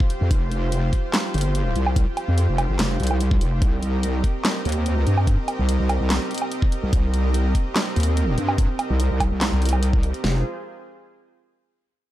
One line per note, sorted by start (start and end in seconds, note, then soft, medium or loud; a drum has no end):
0.00 3.58 F4 medium
0.00 10.20 G4 medium
0.00 3.58 C5 medium
0.00 kick loud
0.10 closed hi-hat medium
0.21 0.29 F2 loud
0.31 0.91 F1 loud
0.31 kick loud
0.31 closed hi-hat medium
0.51 closed hi-hat medium
0.72 closed hi-hat medium
0.93 kick medium
0.93 closed hi-hat medium
1.14 snare loud
1.14 clap medium
1.14 closed hi-hat medium
1.34 1.74 G1 loud
1.34 closed hi-hat soft
1.38 closed hi-hat medium
1.41 closed hi-hat medium
1.55 closed hi-hat medium
1.76 2.05 C2 loud
1.76 closed hi-hat medium
1.87 low woodblock medium
1.96 kick loud
1.96 closed hi-hat medium
2.17 closed hi-hat soft
2.17 low woodblock medium
2.28 2.47 F2 loud
2.38 closed hi-hat medium
2.48 2.67 F1 loud
2.58 closed hi-hat medium
2.58 low woodblock medium
2.69 2.77 G1 loud
2.79 2.98 F1 loud
2.79 snare loud
2.79 clap medium
2.79 closed hi-hat medium
3.00 3.40 C2 loud
3.00 closed hi-hat soft
3.03 closed hi-hat medium
3.07 closed hi-hat medium
3.07 low woodblock medium
3.21 closed hi-hat medium
3.31 kick loud
3.41 3.60 F1 loud
3.41 closed hi-hat medium
3.62 4.22 C2 loud
3.62 10.20 C4 medium
3.62 10.20 A#4 medium
3.62 10.20 D#5 medium
3.62 kick loud
3.62 closed hi-hat medium
3.83 closed hi-hat medium
4.03 closed hi-hat medium
4.24 kick medium
4.24 closed hi-hat medium
4.45 snare loud
4.45 clap medium
4.45 closed hi-hat medium
4.65 5.05 D#2 loud
4.65 closed hi-hat soft
4.69 closed hi-hat medium
4.72 closed hi-hat medium
4.86 closed hi-hat medium
5.07 5.37 G2 loud
5.07 closed hi-hat soft
5.18 low woodblock medium
5.27 kick loud
5.27 closed hi-hat medium
5.48 closed hi-hat medium
5.48 low woodblock medium
5.59 5.78 C2 loud
5.69 closed hi-hat medium
5.80 5.99 C2 loud
5.89 closed hi-hat medium
5.89 low woodblock medium
6.00 6.19 C2 loud
6.10 snare loud
6.10 clap medium
6.10 closed hi-hat medium
6.31 closed hi-hat soft
6.34 closed hi-hat medium
6.38 closed hi-hat medium
6.42 low woodblock medium
6.52 closed hi-hat medium
6.62 kick loud
6.72 closed hi-hat medium
6.83 6.91 C2 loud
6.93 7.53 C2 loud
6.93 kick loud
6.93 closed hi-hat medium
7.14 closed hi-hat medium
7.34 closed hi-hat medium
7.55 kick medium
7.55 closed hi-hat medium
7.76 snare loud
7.76 clap medium
7.76 closed hi-hat medium
7.96 8.36 D#2 loud
7.96 closed hi-hat soft
8.00 closed hi-hat medium
8.03 closed hi-hat medium
8.17 closed hi-hat medium
8.38 8.68 G2 loud
8.38 closed hi-hat medium
8.49 low woodblock medium
8.58 kick loud
8.58 closed hi-hat medium
8.79 closed hi-hat medium
8.79 low woodblock medium
8.90 9.09 C2 loud
9.00 closed hi-hat medium
9.11 9.30 C2 loud
9.20 kick medium
9.20 closed hi-hat medium
9.20 low woodblock medium
9.31 9.50 C2 loud
9.41 snare loud
9.41 clap medium
9.41 closed hi-hat medium
9.52 10.12 C2 loud
9.62 closed hi-hat medium
9.65 closed hi-hat medium
9.69 closed hi-hat medium
9.73 low woodblock medium
9.83 closed hi-hat medium
9.93 kick loud
10.03 closed hi-hat medium
10.14 closed hi-hat soft
10.24 10.43 F1 loud
10.24 10.43 F4 medium
10.24 10.43 G#4 medium
10.24 10.43 C5 medium
10.24 snare loud